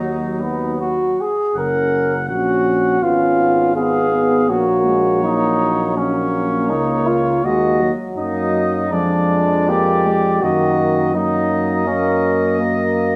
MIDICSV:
0, 0, Header, 1, 6, 480
1, 0, Start_track
1, 0, Key_signature, 6, "major"
1, 0, Tempo, 778210
1, 961, Time_signature, 4, 2, 24, 8
1, 961, Tempo, 736196
1, 5281, Tempo, 757576
1, 6241, Tempo, 726392
1, 8527, End_track
2, 0, Start_track
2, 0, Title_t, "Trumpet"
2, 0, Program_c, 0, 56
2, 0, Note_on_c, 0, 63, 46
2, 460, Note_off_c, 0, 63, 0
2, 963, Note_on_c, 0, 78, 43
2, 1416, Note_off_c, 0, 78, 0
2, 1439, Note_on_c, 0, 78, 44
2, 1918, Note_on_c, 0, 77, 40
2, 1928, Note_off_c, 0, 78, 0
2, 2391, Note_off_c, 0, 77, 0
2, 2394, Note_on_c, 0, 77, 41
2, 2866, Note_off_c, 0, 77, 0
2, 2877, Note_on_c, 0, 73, 43
2, 3820, Note_off_c, 0, 73, 0
2, 3838, Note_on_c, 0, 73, 45
2, 4802, Note_on_c, 0, 75, 48
2, 4811, Note_off_c, 0, 73, 0
2, 5112, Note_off_c, 0, 75, 0
2, 5275, Note_on_c, 0, 75, 46
2, 5744, Note_on_c, 0, 74, 44
2, 5753, Note_off_c, 0, 75, 0
2, 6725, Note_on_c, 0, 75, 53
2, 6735, Note_off_c, 0, 74, 0
2, 7195, Note_off_c, 0, 75, 0
2, 7199, Note_on_c, 0, 75, 57
2, 8527, Note_off_c, 0, 75, 0
2, 8527, End_track
3, 0, Start_track
3, 0, Title_t, "Flugelhorn"
3, 0, Program_c, 1, 56
3, 0, Note_on_c, 1, 54, 37
3, 255, Note_on_c, 1, 59, 43
3, 264, Note_off_c, 1, 54, 0
3, 491, Note_off_c, 1, 59, 0
3, 494, Note_on_c, 1, 66, 49
3, 745, Note_on_c, 1, 68, 48
3, 754, Note_off_c, 1, 66, 0
3, 970, Note_off_c, 1, 68, 0
3, 976, Note_on_c, 1, 70, 55
3, 1341, Note_off_c, 1, 70, 0
3, 1452, Note_on_c, 1, 66, 53
3, 1922, Note_on_c, 1, 65, 54
3, 1931, Note_off_c, 1, 66, 0
3, 2392, Note_off_c, 1, 65, 0
3, 2396, Note_on_c, 1, 68, 60
3, 2879, Note_on_c, 1, 66, 57
3, 2889, Note_off_c, 1, 68, 0
3, 3356, Note_off_c, 1, 66, 0
3, 3360, Note_on_c, 1, 63, 64
3, 3839, Note_on_c, 1, 61, 47
3, 3848, Note_off_c, 1, 63, 0
3, 4311, Note_on_c, 1, 63, 60
3, 4321, Note_off_c, 1, 61, 0
3, 4553, Note_on_c, 1, 65, 52
3, 4563, Note_off_c, 1, 63, 0
3, 4793, Note_off_c, 1, 65, 0
3, 4797, Note_on_c, 1, 66, 55
3, 5104, Note_off_c, 1, 66, 0
3, 5276, Note_on_c, 1, 63, 57
3, 5723, Note_off_c, 1, 63, 0
3, 5748, Note_on_c, 1, 62, 56
3, 6237, Note_on_c, 1, 67, 73
3, 6246, Note_off_c, 1, 62, 0
3, 6715, Note_on_c, 1, 66, 58
3, 6725, Note_off_c, 1, 67, 0
3, 7198, Note_off_c, 1, 66, 0
3, 7201, Note_on_c, 1, 63, 63
3, 7667, Note_off_c, 1, 63, 0
3, 7675, Note_on_c, 1, 61, 58
3, 8147, Note_off_c, 1, 61, 0
3, 8527, End_track
4, 0, Start_track
4, 0, Title_t, "Trombone"
4, 0, Program_c, 2, 57
4, 0, Note_on_c, 2, 54, 30
4, 760, Note_off_c, 2, 54, 0
4, 954, Note_on_c, 2, 61, 36
4, 1412, Note_off_c, 2, 61, 0
4, 1449, Note_on_c, 2, 61, 43
4, 1909, Note_off_c, 2, 61, 0
4, 1914, Note_on_c, 2, 59, 38
4, 2384, Note_off_c, 2, 59, 0
4, 2393, Note_on_c, 2, 59, 47
4, 2865, Note_off_c, 2, 59, 0
4, 2869, Note_on_c, 2, 58, 44
4, 3816, Note_off_c, 2, 58, 0
4, 3832, Note_on_c, 2, 58, 44
4, 4780, Note_off_c, 2, 58, 0
4, 4799, Note_on_c, 2, 58, 37
4, 5105, Note_off_c, 2, 58, 0
4, 5263, Note_on_c, 2, 58, 39
4, 5736, Note_on_c, 2, 56, 49
4, 5745, Note_off_c, 2, 58, 0
4, 6713, Note_on_c, 2, 58, 45
4, 6723, Note_off_c, 2, 56, 0
4, 7191, Note_off_c, 2, 58, 0
4, 7195, Note_on_c, 2, 58, 49
4, 8527, Note_off_c, 2, 58, 0
4, 8527, End_track
5, 0, Start_track
5, 0, Title_t, "French horn"
5, 0, Program_c, 3, 60
5, 0, Note_on_c, 3, 54, 37
5, 738, Note_off_c, 3, 54, 0
5, 1919, Note_on_c, 3, 61, 50
5, 2396, Note_on_c, 3, 59, 40
5, 2406, Note_off_c, 3, 61, 0
5, 2629, Note_off_c, 3, 59, 0
5, 2633, Note_on_c, 3, 59, 44
5, 2873, Note_on_c, 3, 58, 52
5, 2883, Note_off_c, 3, 59, 0
5, 3108, Note_off_c, 3, 58, 0
5, 3112, Note_on_c, 3, 56, 46
5, 3350, Note_on_c, 3, 54, 48
5, 3360, Note_off_c, 3, 56, 0
5, 4314, Note_on_c, 3, 58, 44
5, 4324, Note_off_c, 3, 54, 0
5, 4800, Note_off_c, 3, 58, 0
5, 4805, Note_on_c, 3, 56, 49
5, 5035, Note_on_c, 3, 54, 50
5, 5045, Note_off_c, 3, 56, 0
5, 5747, Note_on_c, 3, 53, 50
5, 5757, Note_off_c, 3, 54, 0
5, 6068, Note_off_c, 3, 53, 0
5, 6234, Note_on_c, 3, 58, 56
5, 6478, Note_on_c, 3, 56, 44
5, 6488, Note_off_c, 3, 58, 0
5, 6717, Note_on_c, 3, 51, 53
5, 6727, Note_off_c, 3, 56, 0
5, 7196, Note_on_c, 3, 54, 52
5, 7206, Note_off_c, 3, 51, 0
5, 7671, Note_off_c, 3, 54, 0
5, 7675, Note_on_c, 3, 58, 58
5, 8147, Note_off_c, 3, 58, 0
5, 8163, Note_on_c, 3, 58, 62
5, 8527, Note_off_c, 3, 58, 0
5, 8527, End_track
6, 0, Start_track
6, 0, Title_t, "Tuba"
6, 0, Program_c, 4, 58
6, 0, Note_on_c, 4, 39, 36
6, 759, Note_off_c, 4, 39, 0
6, 957, Note_on_c, 4, 30, 41
6, 1444, Note_on_c, 4, 34, 41
6, 1453, Note_off_c, 4, 30, 0
6, 1908, Note_off_c, 4, 34, 0
6, 1912, Note_on_c, 4, 32, 46
6, 2873, Note_on_c, 4, 34, 46
6, 2883, Note_off_c, 4, 32, 0
6, 4310, Note_on_c, 4, 37, 39
6, 4320, Note_off_c, 4, 34, 0
6, 4791, Note_off_c, 4, 37, 0
6, 4795, Note_on_c, 4, 39, 43
6, 5103, Note_off_c, 4, 39, 0
6, 5274, Note_on_c, 4, 42, 41
6, 5742, Note_on_c, 4, 41, 52
6, 5751, Note_off_c, 4, 42, 0
6, 6717, Note_off_c, 4, 41, 0
6, 6721, Note_on_c, 4, 42, 48
6, 8527, Note_off_c, 4, 42, 0
6, 8527, End_track
0, 0, End_of_file